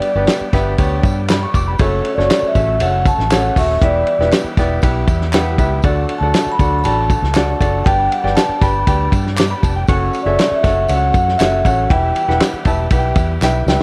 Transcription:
Already playing: grand piano G2, tonewheel organ G3 B3 D4 G4, vibraphone D5
0.02 ride, tambourine
0.15 fingered electric bass G1, grand piano B3 D4 G4 B4 D5
0.27 snare, clap, ride, tambourine
0.41 muted fingered electric bass stroke
0.53 fingered electric bass G1, grand piano B3 D4 G4 B4 E5, kick, snare, ride, tambourine
0.78 fingered electric bass D2, grand piano B3 D4 G4 B4 C#5, kick, ride, tambourine
1.03 fingered electric bass G2, kick, ride, tambourine
1.28 grand piano B5, snare, clap, ride, tambourine
1.43 grand piano C#6
1.54 fingered electric bass F1, grand piano D6, kick, ride, tambourine
1.68 grand piano B5
1.79 fingered electric bass F#1, tonewheel organ C#3 F#3 A3 F#4, grand piano A3 C#4 F#4 A4 C#5, kick, ride, tambourine
2.05 ride
2.14 fingered electric bass F#1, grand piano A3 C#4 F#4 A4 C#5, vibraphone D5
2.19 snare
2.30 snare, clap, ride, tambourine
2.43 muted fingered electric bass stroke
2.47 vibraphone E5
2.55 fingered electric bass A1, grand piano A3 C#4 F#4 A4 E5, kick, ride, tambourine
2.80 fingered electric bass F#1, grand piano A3 C#4 F#4 A4 C#5, vibraphone F#5, ride, tambourine
3.05 vibraphone A5, kick, ride, tambourine
3.18 fingered electric bass A1, snare
3.30 grand piano A3 C#4 F#4 A4 C#5, vibraphone F#5, snare, clap, ride, tambourine
3.56 fingered electric bass D#1, grand piano A3 C#4 F#4 A4 C#5, vibraphone E5, kick, open hi-hat, ride, tambourine
3.81 fingered electric bass E1, grand piano E3 B3 E4 G4 B4 E5, tonewheel organ G3 B3 E4 G4, vibraphone D5, kick, hi-hat pedal, ride
4.07 ride
4.19 fingered electric bass E1, grand piano B3 E4 G4 B4 E5, snare
4.32 snare, clap, ride, tambourine
4.44 muted fingered electric bass stroke
4.57 fingered electric bass E1, grand piano B3 E4 G4 B4 D5, kick, snare, ride, tambourine
4.82 fingered electric bass B1, grand piano B3 E4 G4 B4 E5, kick, ride, tambourine
5.08 fingered electric bass E2, kick, ride, tambourine
5.21 snare
5.33 grand piano B3 E4 G4 B4 F#5, snare, clap, ride, tambourine
5.58 fingered electric bass C#2, grand piano B3 E4 G4 B4 E5, kick, ride, tambourine
5.82 fingered electric bass D2, grand piano D3 D4 F#4 A4 D5 F#5, tonewheel organ F#3 A3 D4 F#4, kick, ride, tambourine
6.09 ride
6.18 fingered electric bass D2, grand piano D5, vibraphone A5
6.22 grand piano D4 F#4 A4 F#5
6.34 snare, clap, ride, tambourine
6.46 muted fingered electric bass stroke
6.52 vibraphone B5
6.59 fingered electric bass D2, grand piano D4 F#4 A4 D5 F#5, kick, ride, tambourine
6.79 vibraphone B5
6.84 fingered electric bass A1, grand piano D4 F#4 A4 D5 G5, vibraphone A5, ride, tambourine
6.92 grand piano A5
7.10 kick, ride, tambourine
7.22 fingered electric bass C#2, snare
7.35 grand piano D4 F#4 A4 D5 F#5, snare, clap, ride, tambourine
7.61 fingered electric bass F#1, grand piano D4 F#4 A4 D5 F#5, kick, ride, tambourine
7.84 fingered electric bass G1, grand piano G2 D4 G4 B4 D5 G5, tonewheel organ G3 B3 G4, vibraphone G5, kick, ride, tambourine
8.10 vibraphone F#5, ride
8.24 fingered electric bass G1, grand piano D4 G4 B4 D5 G5, snare
8.35 vibraphone A5, snare, clap, ride, tambourine
8.49 muted fingered electric bass stroke
8.61 fingered electric bass G1, grand piano D4 G4 B4 D5 G5, vibraphone B5, kick, snare, ride, tambourine
8.87 fingered electric bass D2, grand piano D4 G4 B4 D5 G5, kick, ride, tambourine
9.12 fingered electric bass G2, kick, ride, tambourine
9.27 snare
9.38 grand piano D6, snare, clap, ride, tambourine
9.51 grand piano B5
9.63 fingered electric bass F1, grand piano A5, kick, ride, tambourine
9.76 grand piano G5
9.87 fingered electric bass F#1, tonewheel organ C#3 F#3 A3 F#4, grand piano C#4 F#4 A4 C#5 F#5, kick, ride, tambourine
10.13 ride, tambourine
10.22 fingered electric bass F#1, grand piano F#4 C#5 E5, vibraphone D5
10.27 grand piano C#4 A4
10.39 snare, clap, ride, tambourine
10.51 muted fingered electric bass stroke
10.55 vibraphone E5
10.63 fingered electric bass F#1, grand piano C#4 F#4 A4 C#5 F#5, kick, snare, ride, tambourine
10.88 fingered electric bass C#2, grand piano C#4 F#4 A4 C#5 E5, vibraphone F#5, ride, tambourine
10.96 grand piano F#5
11.13 fingered electric bass F#2, vibraphone F#5, kick, ride, tambourine
11.28 snare
11.38 fingered electric bass F#1, grand piano C#4 F#4 A4 C#5 F#5, vibraphone E5, snare, clap, ride, tambourine
11.65 fingered electric bass A1, grand piano C#4 F#4 A4 C#5 F#5, vibraphone F#5, kick, ride, tambourine
11.90 fingered electric bass E1, grand piano E3 E4 G4 B4 E5 G5, tonewheel organ G3 B3 E4 G4, vibraphone G5, kick, ride
12.15 ride, tambourine
12.28 fingered electric bass E1, grand piano E4 G4 B4 E5 F#5, snare
12.40 snare, clap, ride, tambourine
12.53 muted fingered electric bass stroke
12.65 fingered electric bass E1, grand piano E4 G4 B4 E5 A5, kick, ride, tambourine
12.90 fingered electric bass B1, grand piano E4 G4 B4 E5 F#5, kick, ride, tambourine
12.98 grand piano G5
13.15 fingered electric bass E2, kick, ride, tambourine
13.41 fingered electric bass B1, grand piano E4 G4 B4 E5 G5, snare, clap, tambourine
13.67 fingered electric bass C#2, grand piano E4 G4 B4 E5 G5, snare, tambourine

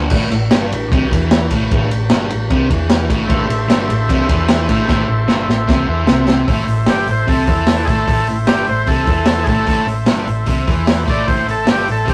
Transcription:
Already playing: distorted electric guitar G2 D3 G3
0.10 fingered electric bass A1, distorted electric guitar A2, kick, crash
0.30 fingered electric bass A1, distorted electric guitar A2, ride
0.50 fingered electric bass G1, distorted electric guitar G2, snare, ride
0.71 fingered electric bass A1, distorted electric guitar A2, ride
0.91 fingered electric bass C2, distorted electric guitar C3, kick, ride
1.11 fingered electric bass E2, distorted electric guitar E3, kick, ride
1.31 snare, ride
1.50 fingered electric bass A1, distorted electric guitar A2, kick, ride
1.70 fingered electric bass A1, distorted electric guitar A2, kick, ride
1.91 fingered electric bass A1, distorted electric guitar A2, ride
2.10 fingered electric bass G1, distorted electric guitar G2, snare, ride
2.30 fingered electric bass A1, distorted electric guitar A2, ride
2.50 fingered electric bass C2, distorted electric guitar C3, kick, ride
2.70 fingered electric bass E2, distorted electric guitar E3, kick, ride
2.90 snare, ride
3.10 fingered electric bass A1, distorted electric guitar A2, kick, ride
3.25 distorted electric guitar A2, transistor combo organ A4 C5 E5
3.30 fingered electric bass A1, kick, ride
3.49 fingered electric bass A1, distorted electric guitar A2, ride
3.68 fingered electric bass G1, distorted electric guitar G2, snare, ride
3.88 fingered electric bass A1, distorted electric guitar A2, ride
4.09 fingered electric bass C2, distorted electric guitar C3, kick, ride
4.28 fingered electric bass E2, distorted electric guitar E3, kick, ride
4.49 snare, ride
4.69 fingered electric bass A1, distorted electric guitar A2, kick, ride
4.87 fingered electric bass A1, distorted electric guitar A2, kick, snare
5.07 fingered electric bass A1, distorted electric guitar A2
5.27 fingered electric bass G1, distorted electric guitar G2, snare
5.46 fingered electric bass A1, distorted electric guitar A2, snare
5.67 fingered electric bass C2, distorted electric guitar C3, kick, snare
5.86 fingered electric bass E2, distorted electric guitar E3
6.05 fingered electric bass C2, distorted electric guitar C3, snare
6.28 snare
6.47 fingered electric bass A1, distorted electric guitar A2, transistor combo organ A4 C5 E5, kick, open hi-hat
6.67 fingered electric bass A1, distorted electric guitar A2, open hi-hat
6.86 fingered electric bass G1, distorted electric guitar G2, transistor combo organ G4, snare, open hi-hat
7.06 fingered electric bass A1, distorted electric guitar A2, open hi-hat
7.11 transistor combo organ C5
7.27 fingered electric bass C2, distorted electric guitar C3, transistor combo organ A4, kick, open hi-hat
7.47 fingered electric bass E2, distorted electric guitar E3, kick, open hi-hat
7.67 snare, open hi-hat
7.85 fingered electric bass A1, distorted electric guitar A2, transistor combo organ G#4, kick, open hi-hat
7.90 transistor combo organ A4
8.07 fingered electric bass A1, distorted electric guitar A2, kick, open hi-hat
8.27 fingered electric bass A1, distorted electric guitar A2, open hi-hat
8.47 fingered electric bass G1, distorted electric guitar G2, transistor combo organ G4, snare, open hi-hat
8.66 fingered electric bass A1, distorted electric guitar A2, transistor combo organ C5, open hi-hat
8.87 fingered electric bass C2, distorted electric guitar C3, transistor combo organ A4, kick, open hi-hat
9.06 fingered electric bass E2, distorted electric guitar E3, kick, open hi-hat
9.26 snare, open hi-hat
9.44 fingered electric bass A1, transistor combo organ G#4, kick, open hi-hat
9.48 distorted electric guitar A2, transistor combo organ A4
9.66 fingered electric bass A1, distorted electric guitar A2, transistor combo organ A4 C5 E5, kick, open hi-hat
9.85 fingered electric bass A1, distorted electric guitar A2, open hi-hat
10.06 fingered electric bass G1, distorted electric guitar G2, snare, open hi-hat
10.25 fingered electric bass A1, distorted electric guitar A2, open hi-hat
10.46 fingered electric bass C2, distorted electric guitar C3, kick, open hi-hat
10.67 fingered electric bass E2, distorted electric guitar E3, kick, open hi-hat
10.87 snare, open hi-hat
11.05 fingered electric bass A1, distorted electric guitar A2, kick, open hi-hat
11.10 transistor combo organ D5
11.27 fingered electric bass A1, distorted electric guitar A2, transistor combo organ C5, kick, open hi-hat
11.46 fingered electric bass A1, distorted electric guitar A2, open hi-hat
11.51 transistor combo organ A4
11.65 fingered electric bass G1, distorted electric guitar G2, snare, open hi-hat
11.71 transistor combo organ G4
11.87 fingered electric bass A1, distorted electric guitar A2, open hi-hat
11.92 transistor combo organ A4
12.05 fingered electric bass C2, distorted electric guitar C3, kick, open hi-hat
12.10 transistor combo organ G4

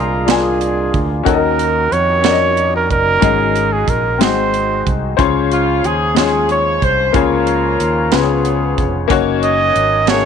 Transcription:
Already playing: fingered electric bass C2, grand piano A#2 D4 F4 G#4 A#4 F5, french horn section G#3 A#3 D4 F4, horn section F4 G#4 A#4
0.26 grand piano D4 F4 G#4 A#4 G#5, horn section D4 F4 G#4, snare, closed hi-hat
0.61 closed hi-hat
0.94 fingered electric bass D2, kick, closed hi-hat
1.23 fingered electric bass D#2, grand piano D#3 C#4 D#4 F#4 A#4 C#5, french horn section C#4 D#4 F#4, trumpet A#4, kick, closed hi-hat
1.34 grand piano D#5
1.59 closed hi-hat
1.92 fingered electric bass F2, trumpet C#5, closed hi-hat
2.21 grand piano C#4 D#4 F#4 A#4, snare, closed hi-hat
2.26 grand piano D5
2.32 grand piano D#5
2.57 closed hi-hat
2.76 trumpet A#4
2.90 fingered electric bass F#1, trumpet A#4, kick, closed hi-hat
3.20 fingered electric bass G#1, grand piano G#2 C#4 D#4 F#4 G#4 D#5, french horn section G#3, kick, closed hi-hat
3.56 closed hi-hat
3.72 trumpet G#4
3.88 fingered electric bass A#1, trumpet A#4, kick, closed hi-hat
4.18 fingered electric bass G#1, grand piano G#2 C4 D#4 F#4 G#4 D#5, french horn section C4 D#4, snare, closed hi-hat
4.23 trumpet C5
4.54 closed hi-hat
4.87 fingered electric bass C2, kick, closed hi-hat
5.17 fingered electric bass C#2, grand piano C#3 C#4 F4 G#4 C5 C#5, french horn section F3 C#4, kick, closed hi-hat
5.52 horn section F4, closed hi-hat
5.84 fingered electric bass D#2, horn section G#4, closed hi-hat
6.15 grand piano G#3 C#4 F4 G#4 C#5, horn section G#4, snare, closed hi-hat
6.49 horn section C#5, closed hi-hat
6.82 fingered electric bass C2, horn section C5, kick, closed hi-hat
7.12 fingered electric bass C#2, grand piano C#3 A#3 C#4 F4 G#4 C#5, french horn section G#3 A#3, horn section F4 A#4, kick, closed hi-hat
7.47 closed hi-hat
7.80 fingered electric bass D#2, closed hi-hat
8.11 fingered electric bass C#2, grand piano C#3 B3 C#4 F4 G#4 B4, french horn section B3, horn section B3 F4 G#4, snare, closed hi-hat
8.21 grand piano C#5
8.45 closed hi-hat
8.78 fingered electric bass F1, kick, closed hi-hat
9.08 fingered electric bass F#1, french horn section D#3 F#3 A#3, grand piano A#3 C#4 D#4 F#4 C#5, kick, closed hi-hat
9.43 trumpet D#5, closed hi-hat
9.76 fingered electric bass G#1, closed hi-hat
10.07 grand piano A3 C#4 D#4 F#4 G#4, trumpet C#5, snare, closed hi-hat
10.13 grand piano A#3

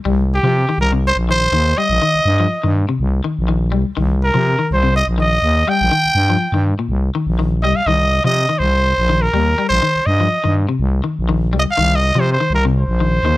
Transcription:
0.05 fm bass C2, clean electric guitar G3
0.34 trumpet G4
0.43 fm bass C3, clean electric guitar F3
0.69 clean electric guitar D#3
0.78 fm bass C2, trumpet A#4
0.92 clean electric guitar C3
1.07 trumpet C5
1.16 fm bass A#1
1.29 clean electric guitar D#3, trumpet C5
1.52 fm bass D#2, clean electric guitar D#3
1.78 clean electric guitar G3, trumpet D#5
1.90 fm bass A#1
2.02 clean electric guitar D#3
2.15 fm bass C2
2.25 fm bass G2
2.40 clean electric guitar F3
2.63 fm bass G2, clean electric guitar D#3
2.89 clean electric guitar C3
3.00 fm bass C2
3.24 clean electric guitar D#3
3.39 fm bass A#1
3.48 clean electric guitar D#3
3.72 fm bass C2, clean electric guitar G3
3.87 fm bass C2
3.97 fm bass C2, clean electric guitar D#3
4.24 trumpet A#4
4.34 fm bass C3, clean electric guitar F3
4.59 clean electric guitar D#3
4.71 fm bass C2, trumpet C5
4.83 clean electric guitar C3
4.96 trumpet D#5
5.08 fm bass A#1
5.18 clean electric guitar D#3, trumpet D#5
5.42 fm bass D#2
5.68 clean electric guitar G3, trumpet G5
5.81 fm bass A#1
5.91 clean electric guitar D#3
6.05 fm bass C2
6.15 fm bass G2
6.30 clean electric guitar F3
6.52 fm bass G2, clean electric guitar D#3
6.79 clean electric guitar A#2
6.89 fm bass C2
7.15 clean electric guitar D#3
7.27 fm bass A#1
7.39 clean electric guitar D#3
7.63 fm bass C2, clean electric guitar G3, trumpet D#5
7.76 fm bass C2, trumpet F5
7.87 fm bass C2, clean electric guitar D#3, trumpet D#5
8.24 fm bass C3, clean electric guitar F3, trumpet D#5
8.49 clean electric guitar D#3
8.59 fm bass C2, trumpet C5
8.98 fm bass A#1
9.09 clean electric guitar D#3
9.22 trumpet A#4
9.34 fm bass D#2, clean electric guitar G3
9.58 clean electric guitar G3
9.69 fm bass A#1, trumpet C5
9.82 clean electric guitar D#3
9.96 fm bass C2
10.06 fm bass G2, trumpet D#5
10.20 clean electric guitar F3
10.44 fm bass G2, clean electric guitar D#3
10.69 clean electric guitar C3
10.80 fm bass C2
11.04 clean electric guitar D#3
11.19 fm bass A#1
11.29 clean electric guitar D#3
11.53 fm bass C2, clean electric guitar G3
11.59 trumpet D#5
11.67 fm bass C2, trumpet F5
11.77 fm bass C2, clean electric guitar D#3
11.96 trumpet D#5
12.15 fm bass C3, clean electric guitar F3
12.20 trumpet C5
12.32 trumpet C5
12.40 clean electric guitar D#3
12.50 fm bass C2
12.54 trumpet A#4
12.65 clean electric guitar C3
12.78 trumpet C5
12.88 fm bass A#1
13.00 clean electric guitar D#3
13.23 fm bass D#2, clean electric guitar D#3

